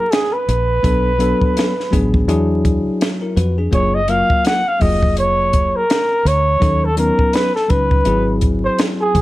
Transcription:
Already playing: A#4
0.12 G#4, snare, closed hi-hat
0.33 B4
0.48 A#1, closed hi-hat
0.83 B1 F#3 B3 D4 A4, kick, closed hi-hat
1.18 F#3 B3 D4 A4, closed hi-hat
1.41 kick
1.57 snare, closed hi-hat
1.80 snare
1.91 A1 F#3 B3 D4 G#4, kick, closed hi-hat
2.14 kick
2.28 E2 F#3 D4 E4 G#4, closed hi-hat
2.65 kick, closed hi-hat
3.01 snare, closed hi-hat
3.22 E4 A#4
3.36 F2 F#4 B4, closed hi-hat
3.58 D4 G#4
3.71 F#1 F#3 A#3 F4 G#4 C#5, kick, closed hi-hat
3.94 D#5
4.08 F#3 A#3 F4 A#4 F5, closed hi-hat
4.30 kick
4.45 F#5, snare, closed hi-hat
4.68 F5
4.80 F1 F#3 A#3 F4 G#4 D#5, kick, open hi-hat
5.03 kick
5.17 C#5, closed hi-hat
5.53 kick, closed hi-hat
5.76 A#4
5.90 snare, closed hi-hat
6.25 D2 C#5, closed hi-hat
6.60 D#2 F#3 C#4 D#4 A4, kick, closed hi-hat
6.85 A4
6.97 F#3 B3 C#4 D#4 A#4, closed hi-hat
7.19 kick
7.33 B4, snare, closed hi-hat
7.55 A4, snare
7.68 C#2 F#3 C#4 D#4 B4, kick, closed hi-hat
7.91 kick
8.05 G#1 F#3 C4 E4 G#4, closed hi-hat
8.41 kick, closed hi-hat
8.64 C5
8.79 snare, closed hi-hat
9.01 G#4
9.15 C2, kick, closed hi-hat

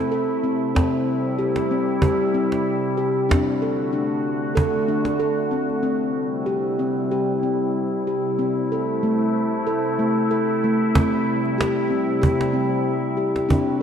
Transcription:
Already playing: C3 A3 C4 E4
0.12 A4
0.44 C4
0.75 G3 C4 E4, cajon bass, cajon slap
1.39 G4, cajon slap
1.56 cajon slap
1.71 C4
2.02 G4, cajon bass
2.34 C4
2.52 cajon slap
2.97 G4
3.29 D3 A3 C4 D4 F#4, cajon bass, cajon slap
3.62 A4
3.93 D4
4.55 A4, cajon bass
4.74 cajon slap
4.88 D4, cajon slap
5.05 cajon slap
5.19 A4, cajon slap
5.51 C4, cajon slap
5.70 cajon slap
5.83 C3 G3 C4 E4
6.46 G4
6.79 C4
7.11 G4
7.43 C4
8.07 G4
8.36 C3 A3 C4
8.72 A4
9.03 A3
9.67 A4
9.99 A3
10.31 A4
10.64 A3
10.94 C3 G3 C4, cajon bass
11.14 cajon slap
11.45 cajon slap
11.58 G4, cajon slap
11.90 C4, cajon slap
12.22 G4, cajon bass
12.41 cajon slap
12.53 C4
13.17 G4
13.36 cajon slap
13.49 D3 A3 C4 D4 F#4, cajon bass

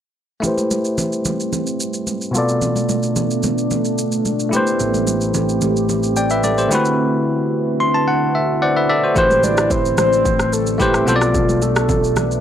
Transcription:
0.40 G3 A3 C4 E4 G4, low conga, shaker
0.46 B4 C5
0.58 high conga, shaker
0.71 high conga, shaker
0.85 shaker
0.98 low conga, shaker
1.13 shaker
1.25 high conga, low conga, shaker
1.40 shaker
1.53 low conga, shaker
1.67 shaker
1.80 shaker
1.94 shaker
2.07 high conga, shaker
2.21 shaker
2.31 B2 B3 D4 F4, high conga, shaker
2.36 A4 D5
2.49 shaker
2.62 low conga, shaker
2.76 high conga, shaker
2.89 high conga, shaker
3.03 shaker
3.16 low conga, shaker
3.31 shaker
3.43 high conga, low conga, shaker
3.58 shaker
3.71 low conga, shaker
3.85 shaker
3.98 shaker
4.12 shaker
4.25 high conga, shaker
4.40 shaker
4.49 A3 C4 E4 G4, high conga, shaker
4.55 B4 C5
4.67 shaker
4.80 A1, low conga, shaker
4.94 high conga, shaker
5.07 high conga, shaker
5.21 shaker
5.34 low conga, shaker
5.49 shaker
5.61 high conga, low conga, shaker
5.76 shaker
5.89 low conga, shaker
6.03 shaker
6.17 D5 G5, shaker
6.30 B4 E5, shaker
6.43 A4 D5, high conga, shaker
6.58 G4 C5, shaker
6.68 D3 A3 C4 E4 F#4 B4, high conga, shaker
6.72 E4 F#4 B4
6.85 shaker
7.80 C6
7.94 A5
8.08 F#5
8.35 E5
8.62 C5 D5 F#5
8.76 B4 E5
8.89 A4 D5 E5
9.04 F#4 C5
9.15 A1 A3 C4 E4 G4 B4 C5, kick, low conga, shaker
9.30 high conga, shaker
9.43 D5, high conga, shaker
9.57 cross-stick, shaker
9.70 C5, kick, low conga, shaker
9.85 shaker
9.98 C5, cross-stick, high conga, low conga, shaker
10.13 shaker
10.25 kick, low conga, shaker
10.39 cross-stick, shaker
10.53 A4, shaker
10.67 shaker
10.78 A3 E4 G4 B4 C5, kick, high conga, shaker
10.94 cross-stick, shaker
11.06 B1 B2 B3 D4 F4 A4 C5, high conga, shaker
11.16 D5
11.21 cross-stick, shaker
11.34 F4, kick, low conga, shaker
11.49 high conga, shaker
11.62 A4, high conga, shaker
11.76 cross-stick, shaker
11.89 kick, low conga, shaker
12.04 shaker
12.16 cross-stick, high conga, low conga, shaker
12.31 shaker

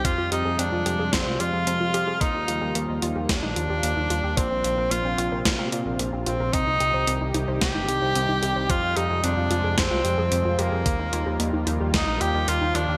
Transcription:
Already playing: C3 G3
0.05 F2 F3 G#3 C4 F4, kick, closed hi-hat
0.18 F2 F4
0.32 F2 D#4 G4, closed hi-hat
0.45 F2 G#4
0.59 F2 C4 D4, closed hi-hat
0.72 F2 F4
0.86 F2 G4, closed hi-hat
0.99 F2 G#4
1.13 F2 C4, kick, snare, closed hi-hat
1.26 C2 F4
1.40 F2 F4 G4, closed hi-hat
1.53 F2 G#4
1.67 F2 C4, closed hi-hat
1.81 F2 F4
1.94 F2 G4, closed hi-hat
2.08 F2 G#4
2.21 D#2 D#3 A#3 D#4, kick, closed hi-hat
2.34 D#2 D#4
2.48 D#2 F4, closed hi-hat
2.62 D#2 G4
2.75 D#2 A#3, closed hi-hat
2.89 D#2 D#4
3.02 D#2 F4, closed hi-hat
3.16 D#2 G4
3.29 D#2 A#3 D4, kick, snare, closed hi-hat
3.43 A#1 D#4
3.56 D#2 F4, closed hi-hat
3.70 D#2 G4
3.83 D#2 A#3, closed hi-hat
3.97 D#2 D#4
4.10 D#2 F4, closed hi-hat
4.24 D#2 G4
4.37 A#1 A#2 C3 A#3 C4 F4, kick, closed hi-hat
4.51 A#1 C4
4.64 A#1 F4, closed hi-hat
4.78 A#1 A#4
4.91 A#1 A#3 F4, closed hi-hat
5.05 A#1 C4
5.18 A#1 F4, closed hi-hat
5.32 A#1 A#4
5.45 F2 A#3, kick, snare, closed hi-hat
5.59 A#2 C4
5.72 A#2 F4, closed hi-hat
5.86 A#1 A#4
5.99 A#1 A#3, closed hi-hat
6.13 A#1 C4
6.26 A#1 C4 F4, closed hi-hat
6.40 A#1 A#4
6.53 C2 C3 D#3 G3 C4 D#4 G4, kick, closed hi-hat
6.67 C2 D#4
6.80 C2 G4, closed hi-hat
6.94 C2 C5
7.07 C2 C4, closed hi-hat
7.21 C2 D#4
7.34 C2 D#4, closed hi-hat
7.48 C2 C5
7.61 C2 C4 G4, kick, snare, closed hi-hat
7.75 G1 D#4
7.88 C2 G4, closed hi-hat
8.02 C2 C5
8.15 C2 C4, closed hi-hat
8.29 C2 D#4
8.42 C2 G4, closed hi-hat
8.56 C2 C5
8.70 F2 C3 F3 G#3 C4 F4, kick, closed hi-hat
8.83 F2 F4
8.97 F2 D#4 G4, closed hi-hat
9.10 F2 G#4
9.24 F2 C4 D4, closed hi-hat
9.37 F2 F4
9.51 F2 F4, closed hi-hat
9.64 F2 G#4
9.78 F2 C4, kick, snare, closed hi-hat
9.91 C2 F4
10.05 F2 G4, closed hi-hat
10.18 F2 G#4
10.32 F2 C4, closed hi-hat
10.45 F2 F4
10.59 F2 A#3 G4, closed hi-hat
10.72 F2 G#4
10.86 D#2 D#3 G3 A#3, kick, closed hi-hat
10.99 D#2 D#4
11.13 D#2 F4, closed hi-hat
11.26 D#2 G4
11.40 D#2 A#3, closed hi-hat
11.53 D#2 D#4
11.67 D#2 D#4, closed hi-hat
11.80 D#2 G4
11.94 D#2 A#3 D#4, kick, snare, closed hi-hat
12.07 A#1 D#4
12.21 D#2 F4 G4, closed hi-hat
12.34 D#2 G4
12.48 D#2 A#3 F4, closed hi-hat
12.61 D#2 D#4
12.75 D#2 D4 F4, closed hi-hat
12.88 D#2 G4

